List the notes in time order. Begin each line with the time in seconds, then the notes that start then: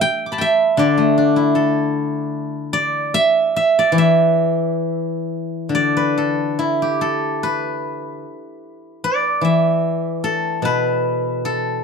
Already playing: E5
0.01 G5
0.26 D6
0.32 A5 B5
0.38 E5 G5
0.77 D3 D5
0.98 A3
1.18 D4
1.36 E4
1.55 A4
2.73 D5
3.14 E5
3.56 E5
3.79 D5
3.92 E3
3.98 E5
5.69 D3
5.75 D5
5.97 B4
6.18 A4
6.59 E4
6.82 G4
7.01 A4
7.43 B4
9.04 D5
9.41 E3 E5
10.24 A4
10.62 B2 B4
11.45 A4